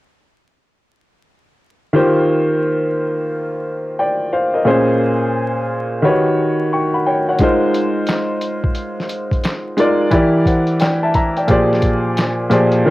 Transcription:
1.93 upright piano D#3 A#3 F4 G4 C5
3.99 upright piano D5 G5
4.33 upright piano C5 F5
4.54 upright piano A#4 D#5
4.65 upright piano A#2 A#3 C#4 G#4 C5
6.02 upright piano D#3 D#4 F#4 G4 B4 C#5
6.73 upright piano G5 C#6
6.94 upright piano F#5 B5
7.07 upright piano C#5 G5
7.29 upright piano C#5 F#5
7.39 upright piano G#3 D#4 F4 A#4, kick, closed hi-hat
7.43 upright piano C5
7.74 closed hi-hat
8.07 snare, clap, closed hi-hat
8.41 closed hi-hat
8.64 kick
8.75 closed hi-hat
9.00 snare
9.09 closed hi-hat
9.31 kick, closed hi-hat
9.44 snare, clap, closed hi-hat
9.77 upright piano G#3 D#4 F4 A#4 D5, closed hi-hat
10.10 upright piano E3 E4 G4 A#4 D5, kick, closed hi-hat
10.46 upright piano C5 F#5, kick, closed hi-hat
10.67 closed hi-hat
10.80 upright piano D5 G5, snare, clap, closed hi-hat
11.03 upright piano E5 A5
11.14 upright piano E5 A#5, kick, closed hi-hat
11.37 upright piano D5 G5, closed hi-hat
11.48 upright piano A#2 F3 G4 G#4 C5 D5, kick, closed hi-hat
11.73 snare
11.82 kick, closed hi-hat
12.17 snare, clap, closed hi-hat
12.50 upright piano A#2 F3 G4 G#4 C5 D5, closed hi-hat
12.72 closed hi-hat
12.86 upright piano D#3 A#3 F4

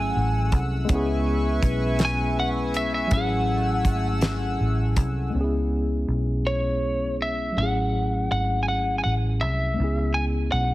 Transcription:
Already playing: fingered electric bass G#1, tine electric piano F#3 A3 C#4 E4 G#4, analog synth pad A3 F#5 E6, lead electric guitar G#5
0.16 fingered electric bass A1
0.52 fingered electric bass C2, kick, closed hi-hat
0.85 tine electric piano G#3 B3
0.89 fingered electric bass C#2, tine electric piano C#4 E4, analog synth pad B4 E5 G#5 C#6, kick, closed hi-hat
0.95 tine electric piano G#4
1.63 fingered electric bass B1, kick, closed hi-hat
1.99 snare, closed hi-hat
2.05 lead electric guitar G#5
2.40 lead electric guitar F#5
2.74 lead electric guitar E5, closed hi-hat
2.94 lead electric guitar E5
3.07 tine electric piano F#3 A3
3.11 fingered electric bass A1, analog synth pad A3 F#5 E6, tine electric piano C#4 E4, lead electric guitar F#5, kick, closed hi-hat
3.17 tine electric piano G#4
3.85 fingered electric bass G#1, kick, closed hi-hat
4.21 snare, closed hi-hat
4.60 fingered electric bass A1
4.96 fingered electric bass C2, kick, closed hi-hat
5.30 tine electric piano G#3 B3
5.34 fingered electric bass C#2, tine electric piano C#4 D4
5.41 tine electric piano E4 G#4
6.08 fingered electric bass B1
6.47 lead electric guitar C#5
7.22 lead electric guitar E5
7.52 tine electric piano F#3 A3
7.57 fingered electric bass A1, tine electric piano C#4 E4, lead electric guitar F#5
7.63 tine electric piano G#4
8.31 fingered electric bass G#1, lead electric guitar F#5
8.63 lead electric guitar G#5
8.68 lead electric guitar F#5
8.98 lead electric guitar G#5
9.04 fingered electric bass A1, lead electric guitar F#5
9.41 fingered electric bass C2, lead electric guitar E5
9.73 tine electric piano G#3 B3
9.79 fingered electric bass C#2, tine electric piano C#4 E4
9.84 tine electric piano G#4
10.14 lead electric guitar G#5
10.52 fingered electric bass B1, lead electric guitar F#5

